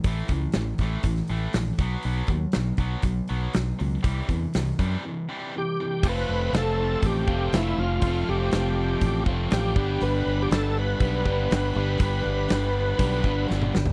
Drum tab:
CC |----------------|----------------|----------------|x---------------|
HH |o-o-o-o-o-o-o-o-|o-o-o-o-o-o-o-o-|o-o-o-o---------|----o---o---o---|
SD |----o-o--o--o---|----o-------o---|----o-----------|----o-------o---|
T2 |----------------|----------------|----------------|----------------|
FT |----------------|----------------|----------------|----------------|
BD |o-o---o-o-----o-|--o---o-o-------|o-o---o---------|o-------o-o-----|

CC |----------------|----------------|----------------|
HH |o---o---o---o---|o---o---o---o---|o---o---o-------|
SD |----o-------o---|----o-------o---|----o-------o-o-|
T2 |----------------|----------------|-------------o--|
FT |----------------|----------------|---------------o|
BD |o-------o-o---o-|--------o-o-----|o-------o-o-----|